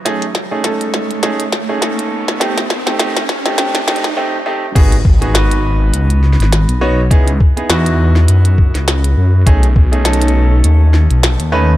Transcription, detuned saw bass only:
X:1
M:4/4
L:1/16
Q:"Swing 16ths" 1/4=102
K:G#phr
V:1 name="Detuned saw bass" clef=bass
z16 | z16 | G,,,2 G,,,6 C,,3 G,,,2 B,,,3 | C,,2 z2 E,,4 F,,3 C,,3 F,,2 |
B,,,2 B,,,6 D,,3 B,,,2 D,,3 |]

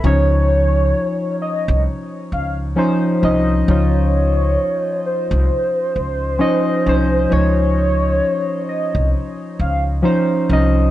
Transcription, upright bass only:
X:1
M:4/4
L:1/16
Q:"Swing 16ths" 1/4=66
K:Db
V:1 name="Upright bass" clef=bass
D,,4 z3 C,, z2 D,,2 z2 C,,2 | D,,4 z3 C,, z2 D,,2 z2 C,,2 | D,,4 z3 C,, z2 D,,2 z2 C,,2 |]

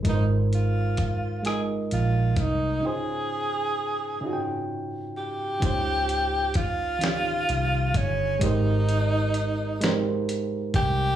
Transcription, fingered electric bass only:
X:1
M:6/8
L:1/8
Q:3/8=43
K:Dblyd
V:1 name="Fingered electric bass" clef=bass
A,,,4 B,,, C,, | z6 | D,,4 C,, G,,, | A,,,4- A,,, C,, |]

